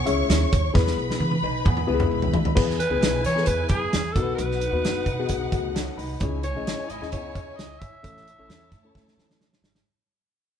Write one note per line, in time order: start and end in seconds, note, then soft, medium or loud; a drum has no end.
0.00 0.71 C#5 medium
0.00 0.71 C#6 loud
0.06 0.24 C#2 medium
0.06 0.52 C#4 medium
0.06 0.52 E4 medium
0.06 0.72 E4 medium
0.06 0.52 G#4 medium
0.06 0.71 C#5 medium
0.06 0.52 E5 loud
0.06 closed hi-hat medium
0.29 0.46 D#2 medium
0.29 snare loud
0.29 closed hi-hat medium
0.52 0.70 D#2 medium
0.52 kick loud
0.52 closed hi-hat medium
0.74 0.92 E2 loud
0.74 1.35 B3 medium
0.74 1.35 E4 medium
0.74 1.35 G#4 medium
0.74 1.35 B4 medium
0.74 2.09 B4 medium
0.74 2.09 B5 loud
0.74 kick loud
0.74 snare medium
0.87 snare soft
0.97 1.14 B1 medium
1.11 snare medium
1.20 1.37 E3 medium
1.20 high tom medium
1.31 high tom medium
1.43 1.60 B1 medium
1.43 1.65 D#4 medium
1.43 1.65 B4 medium
1.65 1.83 E2 medium
1.65 1.88 B3 medium
1.65 1.87 G#4 medium
1.65 kick medium
1.65 mid tom medium
1.77 mid tom medium
1.87 2.06 C#2 medium
1.87 2.53 G#3 medium
1.87 2.33 B3 medium
1.87 2.33 E4 medium
1.87 2.53 E4 medium
1.87 1.93 G4 medium
1.87 2.34 B4 medium
1.94 2.37 G#4 medium
2.00 mid tom medium
2.11 2.28 B1 medium
2.11 2.56 B4 medium
2.11 2.56 B5 medium
2.22 floor tom medium
2.34 2.43 D#2 medium
2.34 floor tom loud
2.45 floor tom medium
2.55 2.82 E2 loud
2.55 2.79 B3 medium
2.55 2.79 E4 medium
2.55 4.13 E4 medium
2.55 2.79 G#4 medium
2.55 2.79 B4 medium
2.55 4.13 B4 medium
2.55 4.13 G#5 medium
2.55 kick loud
2.55 crash medium
2.70 snare soft
2.79 3.22 B4 loud
2.79 closed hi-hat medium
2.90 2.99 C#2 loud
2.90 3.21 B3 medium
2.90 3.21 E4 medium
2.90 3.21 G#4 medium
2.90 3.21 B4 medium
3.01 3.19 B1 loud
3.01 snare loud
3.01 closed hi-hat medium
3.24 3.49 C#5 loud
3.24 snare soft
3.24 closed hi-hat medium
3.36 3.97 B3 medium
3.36 3.97 E4 medium
3.36 3.97 G#4 medium
3.36 3.42 A4 medium
3.36 snare soft
3.42 4.00 B4 medium
3.46 3.65 E2 loud
3.46 3.68 B4 loud
3.46 kick medium
3.46 closed hi-hat medium
3.69 3.87 F#2 medium
3.69 4.13 G#4 loud
3.69 kick medium
3.69 closed hi-hat medium
3.93 4.11 E2 medium
3.93 snare loud
3.93 closed hi-hat medium
4.12 4.33 B1 medium
4.12 4.61 B3 medium
4.12 6.16 D#4 medium
4.12 4.61 D#4 medium
4.12 4.35 A4 medium
4.12 6.17 B4 medium
4.12 6.16 F#5 medium
4.12 kick loud
4.16 4.61 F#4 medium
4.16 4.22 A#4 medium
4.16 closed hi-hat medium
4.22 4.65 B4 medium
4.35 4.64 B1 loud
4.35 5.70 B4 loud
4.35 closed hi-hat medium
4.51 snare soft
4.61 closed hi-hat medium
4.72 4.81 D#2 loud
4.72 5.03 B3 medium
4.72 5.03 D#4 medium
4.72 5.03 F#4 medium
4.72 5.03 B4 medium
4.83 5.01 F#1 medium
4.83 snare loud
4.83 closed hi-hat medium
5.06 5.23 B2 medium
5.06 kick medium
5.06 closed hi-hat medium
5.19 5.80 B3 medium
5.19 5.79 D#4 medium
5.19 5.80 F#4 medium
5.19 5.80 G#4 medium
5.29 5.47 B1 medium
5.29 kick medium
5.29 closed hi-hat medium
5.52 5.87 C#2 medium
5.52 5.74 A3 medium
5.52 5.74 F#4 medium
5.52 kick loud
5.52 closed hi-hat medium
5.74 5.96 C#4 medium
5.74 5.96 A4 medium
5.74 snare loud
5.74 closed hi-hat medium
5.98 6.15 C2 medium
5.98 6.41 D#4 medium
5.98 6.41 B4 medium
5.98 open hi-hat medium
6.20 6.55 C#2 loud
6.20 6.45 C#4 medium
6.20 8.00 E4 medium
6.20 6.45 E4 medium
6.20 6.45 G#4 medium
6.20 8.00 C#5 medium
6.20 6.45 C#5 loud
6.20 8.00 G#5 medium
6.20 kick loud
6.20 closed hi-hat medium
6.43 6.91 C#5 medium
6.43 closed hi-hat medium
6.55 6.72 A1 medium
6.55 6.86 C#4 medium
6.55 6.86 E4 medium
6.55 6.86 G#4 medium
6.55 6.86 D#5 medium
6.67 snare loud
6.67 closed hi-hat medium
6.90 6.98 G#1 medium
6.90 7.12 G#3 medium
6.90 7.12 E4 medium
6.90 7.12 D#5 medium
6.90 closed hi-hat medium
7.01 7.12 D#2 medium
7.01 7.62 C#4 medium
7.01 7.62 E4 medium
7.01 7.62 G#4 medium
7.01 7.62 D#5 medium
7.01 snare soft
7.12 7.36 C#2 medium
7.12 7.35 B3 medium
7.12 7.35 G#4 medium
7.12 7.58 C#5 medium
7.12 kick medium
7.12 closed hi-hat medium
7.35 7.53 D#2 medium
7.35 8.01 E4 medium
7.35 8.01 C#5 medium
7.35 kick medium
7.35 closed hi-hat medium
7.56 7.75 C#2 medium
7.56 7.81 D#5 medium
7.56 snare medium
7.56 closed hi-hat medium
7.79 7.98 G#1 medium
7.79 9.40 E5 loud
7.79 kick loud
7.79 closed hi-hat medium
8.03 8.30 A1 loud
8.03 8.26 C#4 medium
8.03 8.26 E4 medium
8.03 9.82 E4 medium
8.03 8.26 A4 medium
8.03 8.26 C#5 medium
8.03 9.83 C#5 medium
8.03 9.83 A5 medium
8.03 kick loud
8.03 closed hi-hat medium
8.17 snare soft
8.27 closed hi-hat medium
8.38 8.47 A1 medium
8.38 8.68 C#4 medium
8.38 8.68 E4 medium
8.38 8.69 A4 medium
8.38 8.69 C#5 loud
8.48 8.73 E2 medium
8.48 snare loud
8.48 closed hi-hat medium
8.71 8.89 A2 medium
8.71 kick medium
8.71 snare soft
8.71 closed hi-hat medium
8.84 9.45 C#4 medium
8.84 9.45 E4 medium
8.84 9.45 A4 medium
8.84 9.45 C#5 medium
8.95 9.12 A2 loud
8.95 kick medium
8.95 snare medium
9.08 snare medium
9.17 9.52 A1 medium
9.17 snare medium
9.30 snare medium
9.41 snare medium
9.53 snare medium
9.62 9.79 G#1 medium
9.62 snare loud
9.75 snare medium